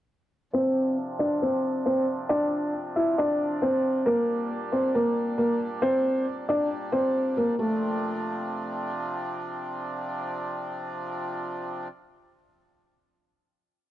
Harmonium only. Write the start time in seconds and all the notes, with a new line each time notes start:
0.53 C3 F3 D4
4.06 A#2 G3
7.59 C3 F3 D4